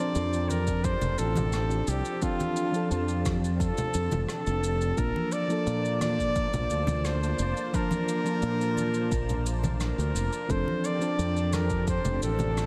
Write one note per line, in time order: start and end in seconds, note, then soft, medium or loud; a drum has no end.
0.00 2.21 F3 medium
0.00 4.94 F3 medium
0.00 2.22 C4 medium
0.00 4.94 C4 medium
0.00 2.23 D4 medium
0.00 4.94 D4 medium
0.00 4.94 G4 medium
0.00 2.23 A4 medium
0.00 0.51 D5 loud
0.00 12.66 A5 medium
0.00 2.19 A5 medium
0.15 0.95 F2 medium
0.15 shaker medium
0.33 shaker soft
0.50 0.86 A#4 medium
0.50 high conga medium
0.50 shaker medium
0.67 kick medium
0.67 shaker soft
0.84 1.20 C5 loud
0.84 kick loud
0.84 shaker medium
1.01 1.15 F1 medium
1.01 low conga medium
1.01 shaker medium
1.18 1.81 A1 medium
1.18 1.90 A4 medium
1.18 shaker medium
1.36 high conga medium
1.36 low conga medium
1.36 shaker medium
1.52 cross-stick medium
1.52 shaker medium
1.71 shaker soft
1.87 2.01 C2 medium
1.87 2.24 G4 medium
1.87 shaker medium
2.05 shaker soft
2.21 2.70 F3 medium
2.21 2.70 C4 medium
2.21 2.70 D4 medium
2.21 2.92 F4 loud
2.21 2.71 A4 medium
2.21 kick loud
2.21 shaker medium
2.40 high conga medium
2.40 shaker soft
2.56 shaker medium
2.72 4.93 F3 medium
2.72 4.93 C4 medium
2.72 4.94 D4 medium
2.72 shaker soft
2.76 4.95 A4 medium
2.91 3.70 F2 medium
2.91 3.31 F4 medium
2.91 shaker medium
3.08 shaker soft
3.25 kick loud
3.25 cross-stick medium
3.25 high conga medium
3.25 shaker medium
3.44 shaker soft
3.60 4.25 A4 loud
3.60 kick loud
3.60 shaker medium
3.77 low conga medium
3.77 shaker medium
3.94 4.08 F2 medium
3.94 shaker medium
4.11 4.25 F1 medium
4.11 high conga medium
4.11 low conga medium
4.11 shaker medium
4.29 5.00 A4 loud
4.29 cross-stick medium
4.29 shaker medium
4.46 4.91 F1 loud
4.46 shaker soft
4.63 shaker medium
4.81 shaker soft
4.97 5.11 A#1 medium
4.97 5.45 F3 medium
4.97 5.46 A#3 medium
4.97 10.46 A#3 medium
4.97 5.46 D4 medium
4.97 10.46 F4 medium
4.97 5.34 A#4 loud
4.97 10.46 C5 medium
4.97 10.46 D5 medium
4.97 5.46 A5 medium
4.97 kick loud
4.97 shaker medium
5.16 high conga medium
5.32 6.02 D5 loud
5.32 shaker medium
5.48 7.69 F3 medium
5.48 7.70 A#3 medium
5.48 7.70 D4 medium
5.48 7.71 A4 medium
5.48 shaker soft
5.67 6.46 A#2 medium
5.67 shaker medium
5.85 shaker soft
6.01 7.07 D5 loud
6.01 cross-stick medium
6.01 high conga medium
6.01 shaker medium
6.19 kick medium
6.19 shaker soft
6.36 kick loud
6.36 shaker medium
6.54 6.66 A#1 medium
6.54 low conga medium
6.54 shaker soft
6.70 7.32 D2 medium
6.70 shaker medium
6.87 high conga medium
6.87 low conga loud
6.87 shaker medium
7.05 7.77 C5 medium
7.05 cross-stick medium
7.05 shaker medium
7.23 shaker soft
7.39 7.52 F1 medium
7.39 shaker medium
7.57 shaker soft
7.73 8.21 F3 medium
7.73 8.22 A#3 medium
7.73 8.22 D4 medium
7.73 9.55 A#4 loud
7.73 8.23 A5 medium
7.73 kick loud
7.73 shaker medium
7.91 high conga medium
7.91 shaker soft
8.08 shaker medium
8.24 10.45 F3 medium
8.24 10.46 A#3 medium
8.24 10.47 D4 medium
8.24 shaker soft
8.29 10.47 A5 medium
8.42 9.13 A#2 medium
8.42 shaker medium
8.61 shaker soft
8.77 high conga medium
8.77 shaker medium
8.94 shaker soft
9.12 9.91 A#1 medium
9.12 kick loud
9.12 shaker medium
9.29 low conga medium
9.29 shaker soft
9.46 shaker medium
9.63 high conga medium
9.63 low conga medium
9.63 shaker soft
9.80 10.52 A#4 medium
9.80 cross-stick medium
9.80 shaker medium
9.98 10.11 D2 medium
9.98 shaker soft
10.15 10.28 F1 medium
10.15 shaker medium
10.33 shaker medium
10.48 10.63 F1 medium
10.48 10.97 F3 medium
10.48 12.66 F3 medium
10.48 12.66 C4 medium
10.48 10.97 C4 medium
10.48 12.66 D4 medium
10.48 10.98 D4 medium
10.48 12.66 G4 medium
10.48 10.98 A4 medium
10.48 10.87 C5 loud
10.48 kick loud
10.48 shaker medium
10.68 high conga medium
10.84 11.55 D5 loud
10.84 shaker medium
10.99 12.66 F3 medium
10.99 12.66 C4 medium
10.99 12.66 D4 medium
10.99 12.66 A5 medium
10.99 shaker soft
11.19 11.98 F2 medium
11.19 shaker medium
11.36 shaker soft
11.53 11.88 A#4 medium
11.53 cross-stick medium
11.53 high conga medium
11.53 shaker medium
11.70 kick medium
11.70 shaker soft
11.87 12.20 C5 medium
11.87 kick loud
11.87 shaker medium
12.05 12.18 F1 medium
12.05 low conga medium
12.05 shaker medium
12.22 12.66 A1 medium
12.22 12.66 A4 medium
12.22 shaker medium
12.39 high conga medium
12.39 low conga medium
12.39 shaker medium
12.57 cross-stick medium
12.57 shaker medium